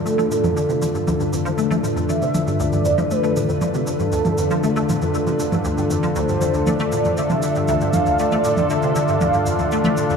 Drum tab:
SH |xxxxxxxxxxxxxxxx|xxxxxxxxxxxxxxxx|xxxxxxxxxxxxxxxx|xxxxxxxxxxxxxxxx|
T1 |-o-o--o-o--o-o--|o-o--o-o--o-o--o|-o--o-o--o-o--o-|--o-o--o-o--o-o-|

SH |xxxxxxxxxxxxxxxx|
T1 |-o-o--o-o--o-o--|